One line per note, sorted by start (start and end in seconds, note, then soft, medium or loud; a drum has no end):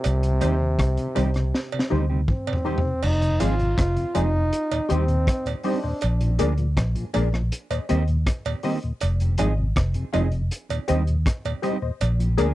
0.00 2.25 C3 loud
0.00 closed hi-hat medium
0.04 0.40 C2 loud
0.04 cowbell medium
0.23 0.32 C3 medium
0.23 closed hi-hat medium
0.40 0.77 D#2 medium
0.40 0.51 D#3 medium
0.40 0.54 G3 medium
0.40 0.51 G3 medium
0.40 0.54 C4 medium
0.40 0.52 C4 medium
0.40 0.54 D#4 medium
0.40 0.54 D#4 loud
0.40 0.54 G4 medium
0.40 0.55 G4 medium
0.40 0.55 C5 loud
0.40 closed hi-hat medium
0.40 cowbell medium
0.60 0.70 C3 medium
0.79 0.97 C2 medium
0.79 kick medium
0.79 cross-stick loud
0.79 closed hi-hat medium
0.97 1.08 C3 medium
0.97 closed hi-hat medium
1.15 1.51 C2 medium
1.15 1.26 D#3 medium
1.15 1.29 G3 medium
1.15 1.26 G3 medium
1.15 1.29 C4 medium
1.15 1.27 C4 medium
1.15 1.29 D#4 medium
1.15 1.29 G4 medium
1.15 1.30 C5 loud
1.15 closed hi-hat medium
1.15 cowbell medium
1.34 1.45 C3 medium
1.34 cross-stick medium
1.34 closed hi-hat soft
1.54 snare medium
1.72 1.83 C3 medium
1.72 cowbell medium
1.79 snare soft
1.90 2.26 D2 medium
1.90 2.01 D#3 medium
1.90 2.04 G3 medium
1.90 2.01 G3 medium
1.90 2.04 C4 medium
1.90 2.01 C4 medium
1.90 2.04 D#4 medium
1.90 2.04 G4 medium
1.90 2.04 C5 medium
2.10 2.20 C3 medium
2.10 2.20 G3 medium
2.10 2.20 C4 medium
2.10 2.20 D#4 medium
2.10 2.20 G4 medium
2.28 3.06 C4 medium
2.28 kick loud
2.28 mid tom medium
2.47 2.57 C3 medium
2.47 cowbell medium
2.53 floor tom medium
2.65 2.76 D#3 medium
2.65 2.79 G3 medium
2.65 2.76 G3 medium
2.65 2.79 C4 medium
2.65 2.76 C4 medium
2.65 2.78 D#4 medium
2.65 2.79 D#4 medium
2.65 2.79 G4 medium
2.65 2.79 C5 loud
2.78 floor tom medium
2.85 2.94 C3 medium
3.03 3.38 F1 loud
3.03 3.44 D#4 loud
3.03 crash medium
3.03 cowbell medium
3.22 3.31 F2 medium
3.22 3.32 C3 medium
3.22 closed hi-hat soft
3.40 3.76 G#1 medium
3.40 3.53 F3 medium
3.40 3.50 F3 medium
3.40 3.50 G#3 medium
3.40 3.54 C4 medium
3.40 3.50 D#4 medium
3.40 3.54 D#4 medium
3.40 3.53 F4 medium
3.40 3.79 F4 loud
3.40 3.54 G#4 medium
3.40 3.54 G#4 loud
3.40 3.54 D#5 loud
3.40 closed hi-hat medium
3.40 cowbell medium
3.59 3.69 F2 soft
3.59 3.69 C3 medium
3.59 closed hi-hat soft
3.78 3.96 F1 medium
3.78 4.14 F4 loud
3.78 kick loud
3.78 cross-stick loud
3.78 closed hi-hat medium
3.96 4.06 F2 medium
3.96 4.06 C3 medium
3.96 closed hi-hat soft
4.14 4.50 F1 medium
4.14 4.25 F3 medium
4.14 4.28 F3 medium
4.14 4.25 G#3 medium
4.14 4.28 C4 medium
4.14 4.25 D#4 medium
4.14 4.29 D#4 medium
4.14 4.93 D#4 loud
4.14 4.28 F4 medium
4.14 4.28 G#4 medium
4.14 4.29 G#4 medium
4.14 4.29 D#5 medium
4.14 closed hi-hat medium
4.14 cowbell medium
4.34 4.43 F2 medium
4.34 4.43 C3 medium
4.53 closed hi-hat medium
4.71 4.81 D#2 medium
4.71 4.81 A#2 medium
4.71 closed hi-hat soft
4.71 cowbell medium
4.89 5.25 D#2 medium
4.89 4.99 G3 medium
4.89 5.03 G3 medium
4.89 4.99 C4 medium
4.89 5.04 C4 medium
4.89 5.49 C4 loud
4.89 4.99 D#4 medium
4.89 5.04 D#4 medium
4.89 5.03 G4 medium
4.89 5.04 G4 medium
4.89 5.03 C5 medium
4.89 5.03 D#5 loud
4.89 closed hi-hat medium
5.08 5.18 D#2 medium
5.08 5.18 A#2 medium
5.08 closed hi-hat soft
5.27 kick loud
5.27 cross-stick medium
5.27 closed hi-hat medium
5.45 5.55 D#2 medium
5.45 5.56 A#2 medium
5.45 closed hi-hat soft
5.45 cowbell medium
5.63 5.78 G3 medium
5.63 5.74 G3 medium
5.63 5.74 C4 medium
5.63 5.78 C4 medium
5.63 6.36 D4 medium
5.63 5.75 D#4 medium
5.63 5.78 D#4 medium
5.63 5.78 G4 loud
5.63 5.78 G4 medium
5.63 5.78 C5 medium
5.63 5.78 D#5 loud
5.63 open hi-hat soft
5.83 5.93 D#2 medium
5.83 5.93 A#2 medium
5.83 5.91 C5 soft
5.83 5.91 D#5 soft
6.01 6.38 A#1 loud
6.01 closed hi-hat medium
6.01 cowbell medium
6.21 6.31 A#2 medium
6.21 6.30 F3 medium
6.21 closed hi-hat medium
6.38 6.75 D2 medium
6.38 6.52 F3 medium
6.38 6.49 G#3 medium
6.38 6.53 A#3 medium
6.38 6.49 A#3 medium
6.38 6.53 D4 medium
6.38 6.49 D4 medium
6.38 6.53 G#4 medium
6.38 6.53 A#4 medium
6.38 6.53 D5 loud
6.38 closed hi-hat medium
6.38 cowbell medium
6.57 6.68 A#2 medium
6.57 6.68 F3 medium
6.57 closed hi-hat soft
6.77 6.95 A#1 medium
6.77 kick loud
6.77 cross-stick loud
6.77 closed hi-hat medium
6.95 7.05 A#2 medium
6.95 7.05 F3 medium
6.95 closed hi-hat medium
7.13 7.50 A#1 medium
7.13 7.27 F3 medium
7.13 7.24 G#3 medium
7.13 7.24 A#3 medium
7.13 7.28 A#3 medium
7.13 7.24 D4 medium
7.13 7.28 D4 medium
7.13 7.27 G#4 medium
7.13 7.28 G#4 medium
7.13 7.28 A#4 medium
7.13 7.28 D5 loud
7.13 closed hi-hat medium
7.13 cowbell medium
7.33 7.43 A#2 medium
7.33 7.43 F3 medium
7.33 cross-stick medium
7.52 closed hi-hat medium
7.71 7.80 D#2 medium
7.71 7.80 A#2 soft
7.71 7.78 C5 soft
7.71 7.78 D#5 soft
7.71 closed hi-hat soft
7.71 cowbell medium
7.89 8.25 D#2 medium
7.89 8.02 D#3 medium
7.89 7.99 G3 medium
7.89 8.02 A#3 medium
7.89 7.99 C4 medium
7.89 8.03 C4 loud
7.89 7.99 D#4 medium
7.89 8.02 G4 medium
7.89 8.03 G4 loud
7.89 8.03 C5 medium
7.89 8.03 D#5 loud
7.89 closed hi-hat medium
8.08 8.18 D#2 medium
8.08 8.18 A#2 medium
8.08 closed hi-hat soft
8.27 kick loud
8.27 cross-stick medium
8.27 closed hi-hat medium
8.45 8.55 D#2 medium
8.45 8.55 A#2 medium
8.45 closed hi-hat soft
8.45 cowbell medium
8.63 8.77 D#3 medium
8.63 8.74 G3 medium
8.63 8.78 A#3 medium
8.63 8.74 C4 medium
8.63 8.78 C4 medium
8.63 8.74 D#4 medium
8.63 8.77 G4 medium
8.63 8.78 G4 medium
8.63 8.77 C5 medium
8.63 8.77 D#5 loud
8.63 open hi-hat medium
8.83 8.93 D#2 medium
8.83 8.93 A#2 medium
8.83 closed hi-hat soft
9.01 9.37 F1 loud
9.01 closed hi-hat medium
9.01 cowbell medium
9.20 9.30 F2 medium
9.20 9.30 C3 soft
9.20 closed hi-hat medium
9.38 9.74 G#1 medium
9.38 9.52 F3 medium
9.38 9.48 F3 medium
9.38 9.49 G#3 medium
9.38 9.52 C4 medium
9.38 9.52 D#4 medium
9.38 9.49 D#4 medium
9.38 9.52 F4 medium
9.38 9.52 G#4 medium
9.38 9.52 G#4 loud
9.38 9.52 D#5 loud
9.38 closed hi-hat medium
9.38 cowbell medium
9.58 9.67 F2 medium
9.58 9.67 C3 medium
9.76 9.94 F1 medium
9.76 kick medium
9.76 cross-stick loud
9.76 closed hi-hat medium
9.94 10.05 F2 medium
9.94 10.05 C3 medium
9.94 closed hi-hat medium
10.13 10.49 F1 medium
10.13 10.26 F3 medium
10.13 10.23 F3 medium
10.13 10.23 G#3 medium
10.13 10.27 C4 loud
10.13 10.23 D#4 medium
10.13 10.27 D#4 medium
10.13 10.26 F4 medium
10.13 10.27 G#4 medium
10.13 10.27 D#5 loud
10.13 closed hi-hat medium
10.13 cowbell medium
10.32 10.42 F2 medium
10.32 10.42 C3 medium
10.32 closed hi-hat soft
10.51 closed hi-hat medium
10.69 10.79 D#2 medium
10.69 10.79 A#2 medium
10.69 closed hi-hat soft
10.69 cowbell medium
10.88 11.24 D#2 medium
10.88 11.01 G3 medium
10.88 10.98 G3 medium
10.88 11.02 C4 medium
10.88 10.98 C4 medium
10.88 10.98 D#4 medium
10.88 11.02 D#4 medium
10.88 11.01 G4 loud
10.88 11.02 G4 medium
10.88 11.02 C5 medium
10.88 11.02 D#5 loud
10.88 closed hi-hat medium
11.07 11.17 D#2 medium
11.07 11.17 A#2 medium
11.07 closed hi-hat soft
11.26 kick loud
11.26 cross-stick medium
11.26 closed hi-hat medium
11.45 11.54 D#2 medium
11.45 11.54 A#2 medium
11.45 closed hi-hat soft
11.45 cowbell medium
11.62 11.73 G3 medium
11.62 11.76 G3 medium
11.62 11.73 C4 medium
11.62 11.77 C4 medium
11.62 11.73 D#4 medium
11.62 11.77 D#4 medium
11.62 11.76 G4 medium
11.62 11.77 G4 loud
11.62 11.76 C5 medium
11.62 11.77 D#5 loud
11.62 closed hi-hat medium
11.82 11.92 D#2 medium
11.82 11.92 A#2 medium
11.82 11.90 C5 soft
11.82 11.90 D#5 soft
12.01 12.36 A#1 loud
12.01 closed hi-hat medium
12.01 cowbell medium
12.20 12.29 A#2 medium
12.20 12.29 F3 medium
12.20 closed hi-hat medium
12.37 12.54 D2 medium
12.37 12.51 F3 medium
12.37 12.47 G#3 medium
12.37 12.48 A#3 medium
12.37 12.51 A#3 loud
12.37 12.51 D4 medium
12.37 12.48 D4 medium
12.37 12.51 G#4 medium
12.37 12.51 G#4 loud
12.37 12.51 A#4 medium
12.37 12.51 D5 loud
12.37 closed hi-hat medium
12.37 cowbell medium